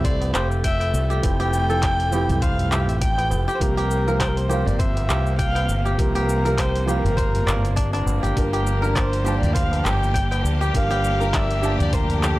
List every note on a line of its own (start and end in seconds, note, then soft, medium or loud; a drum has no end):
0.00 0.31 C2 loud
0.00 1.22 F3 medium
0.00 3.57 A3 medium
0.00 1.23 C4 medium
0.00 1.23 E4 medium
0.00 0.34 G4 medium
0.00 1.21 G4 loud
0.00 0.64 A4 medium
0.00 1.24 A4 medium
0.00 0.38 G5 medium
0.04 1.23 C5 medium
0.04 0.33 D5 loud
0.04 kick loud
0.04 open hi-hat medium
0.04 cabasa soft
0.21 open hi-hat soft
0.21 tabla na medium
0.21 cabasa soft
0.34 0.91 F1 medium
0.34 1.10 G4 medium
0.34 0.47 C5 loud
0.34 clap medium
0.34 cabasa medium
0.51 cabasa soft
0.64 1.08 E5 loud
0.64 0.80 G5 medium
0.64 kick loud
0.64 open hi-hat medium
0.64 cabasa soft
0.80 1.73 G5 medium
0.80 open hi-hat soft
0.80 tabla na medium
0.80 cabasa soft
0.94 1.20 C2 medium
0.94 cabasa medium
1.10 1.39 G4 medium
1.10 tabla tin medium
1.10 cabasa soft
1.22 2.26 F1 loud
1.22 1.66 F3 medium
1.22 1.66 C4 medium
1.22 1.66 E4 medium
1.22 1.67 A4 loud
1.22 2.44 G5 loud
1.22 kick loud
1.22 open hi-hat medium
1.22 cabasa soft
1.40 2.13 G4 loud
1.40 open hi-hat soft
1.40 tabla na medium
1.40 cabasa soft
1.53 cabasa medium
1.69 2.09 F3 medium
1.69 2.09 C4 medium
1.69 2.10 E4 medium
1.69 3.01 A4 medium
1.69 2.10 A4 medium
1.69 cabasa soft
1.83 2.76 G5 medium
1.83 kick loud
1.83 clap medium
1.83 open hi-hat medium
1.83 cabasa soft
2.00 open hi-hat soft
2.00 cabasa soft
2.11 3.57 F3 medium
2.11 3.58 C4 medium
2.11 3.59 E4 medium
2.11 2.71 G4 medium
2.11 3.59 G4 loud
2.11 tabla na medium
2.11 tabla tin soft
2.11 cabasa medium
2.28 2.89 C2 medium
2.28 open hi-hat soft
2.28 tabla ge medium
2.28 cabasa soft
2.42 3.61 C5 medium
2.42 2.74 F5 loud
2.42 kick loud
2.42 open hi-hat medium
2.42 cabasa soft
2.59 open hi-hat soft
2.59 tabla ge medium
2.59 cabasa soft
2.72 3.47 G4 medium
2.72 2.82 E5 medium
2.72 clap medium
2.72 tabla tin medium
2.72 cabasa medium
2.81 2.90 F5 medium
2.88 3.33 A1 loud
2.88 3.00 E5 loud
2.88 open hi-hat soft
2.88 cabasa soft
3.01 3.45 G5 loud
3.01 3.18 G5 medium
3.01 kick medium
3.01 open hi-hat medium
3.01 cabasa soft
3.18 4.12 G5 medium
3.18 open hi-hat soft
3.18 tabla na medium
3.18 tabla tin medium
3.18 cabasa soft
3.31 3.46 F1 medium
3.31 tabla na medium
3.31 cabasa medium
3.48 3.77 G4 medium
3.48 tabla na soft
3.48 cabasa soft
3.55 3.63 C5 medium
3.60 4.63 C2 loud
3.60 8.33 C3 medium
3.60 4.03 F3 medium
3.60 4.04 A#3 medium
3.60 12.39 A#3 medium
3.60 4.04 C4 medium
3.60 4.04 G4 loud
3.60 4.22 A#4 loud
3.60 kick loud
3.60 open hi-hat medium
3.60 cabasa soft
3.77 4.49 G4 loud
3.77 open hi-hat soft
3.77 tabla na medium
3.77 cabasa soft
3.91 cabasa medium
4.07 4.47 F3 medium
4.07 4.47 A#3 medium
4.07 4.48 C4 medium
4.07 4.48 G4 medium
4.07 5.35 A#4 medium
4.07 cabasa soft
4.20 4.29 C5 medium
4.20 5.13 G5 medium
4.20 kick medium
4.20 clap medium
4.20 open hi-hat medium
4.20 cabasa soft
4.28 4.38 A#4 medium
4.36 4.68 C5 medium
4.36 open hi-hat soft
4.36 cabasa soft
4.48 5.95 F3 loud
4.48 5.95 A#3 medium
4.48 5.96 C4 medium
4.48 5.08 G4 medium
4.48 tabla na medium
4.48 cabasa medium
4.52 5.97 F4 loud
4.66 5.07 G1 loud
4.66 4.81 D5 medium
4.66 open hi-hat soft
4.66 tabla ge medium
4.66 cabasa soft
4.79 5.98 C5 medium
4.79 5.39 E5 loud
4.79 kick loud
4.79 open hi-hat medium
4.79 cabasa soft
4.96 open hi-hat soft
4.96 tabla na medium
4.96 cabasa soft
5.09 5.66 C2 medium
5.09 5.85 G4 medium
5.09 clap medium
5.09 cabasa medium
5.26 cabasa soft
5.39 5.83 F5 loud
5.39 5.55 G5 medium
5.39 kick loud
5.39 open hi-hat medium
5.39 cabasa soft
5.55 6.48 G5 medium
5.55 open hi-hat soft
5.55 tabla na medium
5.55 cabasa soft
5.69 5.95 G1 medium
5.69 cabasa medium
5.85 6.15 G4 medium
5.85 tabla tin medium
5.85 cabasa soft
5.97 7.01 C2 loud
5.97 6.41 F3 medium
5.97 6.41 A#3 medium
5.97 6.42 C4 medium
5.97 6.42 G4 loud
5.97 6.60 A#4 medium
5.97 kick loud
5.97 open hi-hat medium
5.97 cabasa soft
6.15 6.87 G4 loud
6.15 open hi-hat soft
6.15 tabla na medium
6.15 cabasa soft
6.29 cabasa medium
6.44 6.84 F3 medium
6.44 6.85 A#3 medium
6.44 6.85 C4 medium
6.44 6.85 G4 medium
6.44 7.73 A#4 medium
6.44 open hi-hat soft
6.44 cabasa soft
6.58 6.91 C5 medium
6.58 7.51 G5 medium
6.58 kick loud
6.58 clap medium
6.58 open hi-hat medium
6.58 cabasa soft
6.75 open hi-hat soft
6.75 cabasa soft
6.86 8.32 F3 loud
6.86 8.33 A#3 medium
6.86 8.34 C4 medium
6.86 8.22 G4 medium
6.86 8.07 A#4 loud
6.86 tabla na medium
6.86 tabla tin soft
6.86 cabasa medium
6.90 8.34 F4 loud
7.05 7.44 G1 loud
7.05 open hi-hat soft
7.05 tabla ge loud
7.05 cabasa soft
7.17 8.36 C5 medium
7.17 kick loud
7.17 open hi-hat medium
7.17 cabasa soft
7.34 open hi-hat soft
7.34 tabla ge medium
7.34 cabasa soft
7.47 8.03 G1 loud
7.47 8.57 D5 medium
7.47 clap medium
7.47 tabla tin medium
7.47 cabasa medium
7.65 open hi-hat soft
7.65 cabasa soft
7.76 7.93 D4 medium
7.76 kick medium
7.76 open hi-hat medium
7.76 cabasa soft
7.93 9.61 D4 loud
7.93 open hi-hat soft
7.93 tabla na medium
7.93 tabla tin soft
7.93 cabasa soft
8.06 8.21 G1 medium
8.06 tabla na medium
8.06 cabasa medium
8.23 8.35 G1 medium
8.23 8.53 G4 medium
8.23 open hi-hat soft
8.23 tabla na soft
8.23 cabasa soft
8.36 9.38 G1 loud
8.36 12.39 F3 medium
8.36 8.79 G3 medium
8.36 8.79 D4 medium
8.36 8.80 F4 medium
8.36 12.39 G4 medium
8.36 8.97 A#4 medium
8.36 8.80 A#4 loud
8.36 12.39 D5 medium
8.36 kick loud
8.36 open hi-hat medium
8.36 cabasa soft
8.53 9.24 G4 loud
8.53 open hi-hat soft
8.53 tabla na medium
8.53 cabasa soft
8.67 cabasa medium
8.82 9.22 G3 medium
8.82 9.22 D4 medium
8.82 9.23 F4 medium
8.82 10.09 A#4 medium
8.82 9.23 A#4 medium
8.82 cabasa soft
8.95 9.40 C5 loud
8.95 10.06 D5 medium
8.95 kick loud
8.95 clap medium
8.95 open hi-hat medium
8.95 cabasa soft
9.13 open hi-hat soft
9.13 cabasa soft
9.24 10.70 G3 loud
9.24 10.71 D4 medium
9.24 10.72 F4 medium
9.24 9.84 G4 medium
9.24 tabla na medium
9.24 cabasa medium
9.28 10.72 A5 loud
9.40 9.82 D2 medium
9.40 9.54 D5 medium
9.40 open hi-hat soft
9.40 tabla ge loud
9.40 cabasa soft
9.53 10.73 C5 medium
9.53 9.86 F5 loud
9.53 kick loud
9.53 open hi-hat medium
9.53 cabasa soft
9.72 open hi-hat soft
9.72 tabla na medium
9.72 cabasa soft
9.84 10.41 G1 medium
9.84 10.61 G4 medium
9.84 10.44 G5 loud
9.84 clap medium
9.84 cabasa medium
10.03 cabasa soft
10.14 10.31 G5 medium
10.14 kick loud
10.14 open hi-hat medium
10.14 cabasa soft
10.31 11.24 G5 medium
10.31 open hi-hat soft
10.31 tabla na medium
10.31 cabasa soft
10.44 10.70 D2 medium
10.44 cabasa medium
10.61 10.90 G4 medium
10.61 tabla tin medium
10.61 cabasa soft
10.74 11.76 G1 loud
10.74 11.17 G3 medium
10.74 11.17 D4 medium
10.74 11.17 F4 medium
10.74 11.18 A#4 medium
10.74 11.35 F5 loud
10.74 kick loud
10.74 open hi-hat medium
10.74 cabasa soft
10.90 11.63 G4 loud
10.90 open hi-hat soft
10.90 tabla na medium
10.90 cabasa soft
11.04 cabasa medium
11.20 11.60 G3 medium
11.20 11.60 D4 medium
11.20 11.61 F4 medium
11.20 12.39 A#4 medium
11.20 11.61 A#4 medium
11.20 cabasa soft
11.33 12.39 D5 medium
11.33 11.81 E5 loud
11.33 kick loud
11.33 clap medium
11.33 open hi-hat medium
11.33 cabasa soft
11.51 open hi-hat soft
11.51 cabasa soft
11.61 12.39 G3 medium
11.61 12.39 D4 medium
11.61 12.39 F4 medium
11.61 12.22 G4 medium
11.61 12.39 A5 loud
11.61 tabla na medium
11.61 tabla tin soft
11.61 cabasa medium
11.79 12.39 D2 medium
11.79 11.96 D5 medium
11.79 open hi-hat soft
11.79 tabla ge loud
11.79 cabasa soft
11.93 12.24 A#4 loud
11.93 12.39 C5 medium
11.93 kick loud
11.93 open hi-hat medium
11.93 cabasa soft
12.10 open hi-hat soft
12.10 tabla ge medium
12.10 cabasa soft
12.22 12.39 G4 medium
12.22 12.39 A4 medium
12.22 clap medium
12.22 tabla tin medium
12.22 cabasa medium